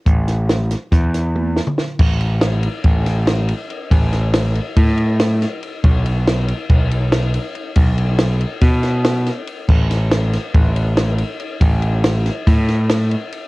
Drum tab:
CC |------------------|x-----------------|------------------|------------------|
RD |------------------|--x-x-x-x-x-x-x-x-|x-x-x-x-x-x-x-x-x-|x-x-x-x-x-x-x-x-x-|
HH |x-x-x-x-x-x-------|------------------|------------------|------------------|
SD |--o-o-o-o-o---o-o-|----o-----o-o-----|--o-o-------o-o---|----o-------o-----|
T1 |------------o-----|------------------|------------------|------------------|
T2 |---------------o--|------------------|------------------|------------------|
BD |o-------o---------|o-------o---------|o-------o---------|o-------o---------|

CC |------------------|x-----------------|------------------|
RD |x-x-x-x-x-x-x-x-x-|--x-x-x-x-x-x-x-x-|x-x-x-x-x-x-x-x-x-|
HH |------------------|------------------|------------------|
SD |----o---o-o-o-o---|--o-o-o-----o-----|----o-o-o-o-o-----|
T1 |------------------|------------------|------------------|
T2 |------------------|------------------|------------------|
BD |o-------o---------|o-------o---------|o-------o---------|